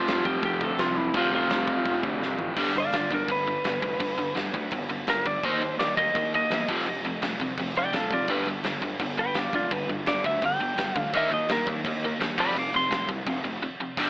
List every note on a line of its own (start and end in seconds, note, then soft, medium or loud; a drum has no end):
0.00 1.13 F2 loud
0.00 1.14 C3 loud
0.00 1.15 F3 loud
0.00 1.82 C4 loud
0.00 0.25 F4 medium
0.08 0.24 F1 loud
0.08 snare loud
0.08 crash medium
0.25 0.42 F1 medium
0.25 0.44 G4 loud
0.25 kick medium
0.42 0.59 F1 loud
0.42 0.63 G4 loud
0.42 kick loud
0.42 crash medium
0.61 0.77 D2 loud
0.61 0.80 A4 loud
0.61 kick medium
0.78 0.95 C2 loud
0.78 0.97 F4 loud
0.78 snare loud
0.78 crash medium
0.96 1.13 F1 medium
0.96 1.15 E4 medium
1.13 1.31 F1 loud
1.13 2.56 F2 loud
1.13 2.57 C3 loud
1.13 1.34 F4 loud
1.13 kick loud
1.13 crash medium
1.18 2.58 F3 loud
1.31 1.48 F1 loud
1.31 2.01 F4 medium
1.49 1.66 F1 medium
1.49 snare loud
1.49 crash medium
1.67 1.84 F1 medium
1.67 kick loud
1.85 2.02 F1 loud
1.85 kick loud
1.85 crash medium
2.03 2.20 D2 loud
2.03 kick loud
2.21 2.38 C2 loud
2.21 snare medium
2.38 2.55 A1 medium
2.38 floor tom loud
2.56 2.70 G1 medium
2.56 2.74 G2 medium
2.56 2.74 D3 loud
2.56 2.74 G3 loud
2.56 kick loud
2.56 crash loud
2.56 crash medium
2.74 2.88 G1 medium
2.74 2.91 G2 medium
2.74 2.92 D3 medium
2.74 2.94 D5 medium
2.74 crash medium
2.80 2.95 F5 medium
2.91 3.06 G1 medium
2.91 3.09 G2 medium
2.91 3.09 D3 loud
2.91 3.10 F4 medium
2.91 3.11 D5 medium
2.91 snare loud
2.91 crash medium
3.11 3.25 G1 medium
3.11 3.27 G2 medium
3.11 3.27 D3 medium
3.11 3.29 D4 medium
3.11 3.30 A#4 medium
3.11 kick medium
3.11 crash medium
3.28 3.56 G1 loud
3.28 3.45 G2 medium
3.28 3.45 D3 medium
3.28 4.34 B4 loud
3.28 kick loud
3.28 crash medium
3.47 3.63 G2 medium
3.47 3.63 D3 medium
3.47 crash medium
3.64 3.78 G1 medium
3.64 3.81 G2 medium
3.64 3.81 D3 medium
3.64 snare loud
3.64 crash medium
3.82 3.96 F1 medium
3.82 3.98 G2 medium
3.82 3.99 D3 medium
3.82 kick loud
3.82 crash medium
4.00 4.14 G1 medium
4.00 4.16 G2 medium
4.00 4.17 D3 medium
4.00 kick loud
4.00 crash medium
4.17 4.31 G1 medium
4.17 4.34 G2 medium
4.17 4.34 D3 medium
4.17 crash medium
4.35 4.49 G1 medium
4.35 4.52 G2 medium
4.35 4.52 D3 medium
4.35 snare loud
4.35 crash medium
4.53 4.67 D2 medium
4.53 4.70 G2 medium
4.53 4.71 D3 medium
4.53 kick loud
4.53 crash medium
4.71 4.85 G1 loud
4.71 4.88 G2 medium
4.71 4.89 D3 medium
4.71 kick loud
4.71 crash medium
4.88 5.03 G1 loud
4.88 5.06 G2 medium
4.88 5.06 D3 medium
4.88 crash medium
5.07 5.21 G1 loud
5.07 5.24 G2 medium
5.07 5.24 D3 medium
5.07 5.26 A#4 loud
5.07 snare loud
5.07 crash medium
5.25 5.39 G1 medium
5.25 5.42 G2 medium
5.25 5.42 D3 medium
5.25 5.45 D5 medium
5.25 kick loud
5.25 crash medium
5.43 5.57 D#2 medium
5.43 5.61 D#3 loud
5.43 5.61 A#3 loud
5.43 5.61 D#4 loud
5.43 5.79 C5 medium
5.43 kick loud
5.43 crash medium
5.60 5.74 D#2 loud
5.60 5.78 D#3 medium
5.60 5.78 A#3 medium
5.60 crash medium
5.78 5.92 D#2 medium
5.78 5.96 D#3 medium
5.78 5.96 A#3 medium
5.78 5.97 D5 medium
5.78 snare loud
5.78 crash medium
5.97 6.11 D#2 medium
5.97 6.14 D#3 medium
5.97 6.14 A#3 medium
5.97 6.32 D#5 medium
5.97 kick loud
5.97 crash medium
6.15 6.42 D#2 loud
6.15 6.32 D#3 medium
6.15 6.32 A#3 medium
6.15 kick loud
6.15 crash medium
6.34 6.50 D#3 medium
6.34 6.50 A#3 medium
6.34 6.69 D#5 loud
6.34 crash medium
6.50 6.64 E2 loud
6.50 6.67 D#3 medium
6.50 6.67 A#3 medium
6.50 snare loud
6.50 crash medium
6.68 6.82 F1 medium
6.68 6.86 F2 loud
6.68 6.86 C3 medium
6.68 6.86 F3 loud
6.68 kick loud
6.68 crash loud
6.86 7.00 F1 loud
6.86 7.03 F2 medium
6.86 7.04 C3 medium
6.86 crash medium
7.03 7.17 F1 medium
7.03 7.21 F2 medium
7.03 7.21 C3 medium
7.03 crash medium
7.21 7.35 F1 medium
7.21 7.38 F2 medium
7.21 7.39 C3 medium
7.21 snare loud
7.21 crash medium
7.39 7.53 C2 medium
7.39 7.57 F2 medium
7.39 7.57 C3 medium
7.39 kick medium
7.39 crash medium
7.57 7.71 F1 loud
7.57 7.75 F2 medium
7.57 7.75 C3 medium
7.57 kick loud
7.57 crash medium
7.75 7.89 F1 loud
7.75 7.92 F2 medium
7.75 7.92 C3 medium
7.75 7.94 D5 medium
7.75 7.96 G5 loud
7.75 crash medium
7.92 8.07 F1 loud
7.92 8.09 F2 medium
7.92 8.10 C3 medium
7.92 8.12 A4 medium
7.92 8.12 F5 medium
7.92 snare loud
7.92 crash medium
8.10 8.25 F1 medium
8.10 8.28 F2 medium
8.10 8.28 C3 medium
8.10 8.29 F4 medium
8.10 8.31 D5 medium
8.10 kick loud
8.10 crash medium
8.28 8.42 G1 loud
8.28 8.46 G2 loud
8.28 8.46 D3 loud
8.28 8.46 G3 loud
8.28 8.47 B4 loud
8.28 kick loud
8.28 crash medium
8.44 8.59 G1 loud
8.44 8.63 G2 medium
8.44 crash medium
8.48 8.63 D3 medium
8.62 8.77 G1 medium
8.62 8.81 G2 medium
8.62 8.81 D3 medium
8.62 snare loud
8.62 crash medium
8.81 8.96 G1 medium
8.81 8.99 G2 medium
8.81 8.99 D3 medium
8.81 kick loud
8.81 crash medium
8.99 9.27 G1 loud
8.99 9.17 G2 medium
8.99 9.17 D3 medium
8.99 kick loud
8.99 crash medium
9.17 9.34 G2 medium
9.17 9.34 D3 medium
9.17 9.39 B4 loud
9.17 9.39 G5 loud
9.17 crash medium
9.34 9.49 G1 loud
9.34 9.52 G2 medium
9.34 9.53 D3 medium
9.34 snare loud
9.34 crash medium
9.39 9.54 D5 medium
9.39 9.55 F5 medium
9.53 9.67 F1 medium
9.53 9.70 G2 medium
9.53 9.70 D3 medium
9.53 9.71 F4 medium
9.53 9.72 D5 medium
9.53 kick loud
9.53 crash medium
9.70 9.85 G1 medium
9.70 9.88 G2 medium
9.70 9.88 D3 loud
9.70 9.89 B4 loud
9.70 kick loud
9.70 crash medium
9.87 10.02 G1 loud
9.87 10.05 G2 medium
9.87 10.06 D3 medium
9.87 crash medium
10.05 10.20 G1 medium
10.05 10.23 G2 medium
10.05 10.23 D3 loud
10.05 10.25 D5 loud
10.05 snare loud
10.05 crash medium
10.24 10.38 D2 medium
10.24 10.41 G2 medium
10.24 10.41 D3 medium
10.24 10.43 E5 loud
10.24 kick loud
10.24 crash medium
10.41 10.56 G1 loud
10.41 10.59 G2 medium
10.41 10.59 D3 medium
10.41 kick loud
10.41 crash medium
10.45 10.99 G5 loud
10.59 10.73 G1 loud
10.59 10.76 G2 medium
10.59 10.77 D3 medium
10.59 crash medium
10.76 10.90 G1 loud
10.76 10.94 G2 medium
10.76 10.94 D3 medium
10.76 snare loud
10.76 crash medium
10.95 11.09 D2 medium
10.95 11.12 G2 medium
10.95 11.12 D3 medium
10.95 kick loud
10.95 crash medium
10.99 11.13 F5 loud
11.13 11.27 D#2 medium
11.13 11.30 D#3 loud
11.13 11.31 A#3 loud
11.13 11.31 D#4 loud
11.13 11.33 E5 loud
11.13 kick loud
11.13 crash medium
11.30 11.44 D#2 loud
11.30 11.48 D#3 medium
11.30 11.48 A#3 medium
11.30 11.50 D#5 medium
11.30 crash medium
11.48 11.62 D#2 medium
11.48 11.66 D#3 medium
11.48 11.66 A#3 medium
11.48 snare loud
11.48 crash medium
11.52 11.68 A#4 loud
11.67 11.81 D#2 medium
11.67 11.83 D#3 medium
11.67 11.83 A#3 medium
11.67 kick loud
11.67 crash medium
11.84 12.12 D#2 loud
11.84 12.02 D#3 medium
11.84 12.01 A#3 medium
11.84 kick loud
11.84 crash loud
12.03 12.20 D#3 medium
12.03 12.20 A#3 medium
12.03 crash medium
12.19 12.34 D#2 medium
12.19 12.37 D#3 medium
12.19 12.37 A#3 loud
12.19 snare loud
12.19 crash medium
12.37 12.51 F1 medium
12.37 12.55 F2 loud
12.37 12.55 C3 loud
12.37 12.55 F3 loud
12.37 12.57 D5 loud
12.37 12.56 B5 medium
12.37 kick loud
12.37 crash loud
12.55 12.69 F1 medium
12.55 12.72 F2 medium
12.55 12.72 C3 medium
12.55 12.74 F5 medium
12.55 12.75 D6 medium
12.55 crash medium
12.73 12.87 F1 loud
12.73 12.90 F2 medium
12.73 12.90 C3 medium
12.73 13.09 C6 loud
12.73 crash medium
12.90 13.04 F1 medium
12.90 13.07 F2 medium
12.90 13.07 C3 medium
12.90 snare loud
12.90 crash medium
13.08 13.22 C2 medium
13.08 13.25 F2 medium
13.08 13.25 C3 medium
13.08 kick medium
13.08 crash medium
13.26 13.40 F1 loud
13.26 13.43 F2 medium
13.26 13.43 C3 medium
13.26 kick loud
13.26 crash medium
13.44 13.58 F1 loud
13.44 13.60 F2 medium
13.44 13.61 C3 medium
13.44 crash medium
13.63 13.78 F2 medium
13.63 13.79 C3 medium
13.80 13.96 F2 medium
13.80 13.96 C3 medium
13.97 14.10 G1 loud
13.97 14.10 G2 loud
13.97 14.10 D3 loud
13.97 14.10 G3 loud
13.97 kick loud
13.97 crash loud
13.97 crash medium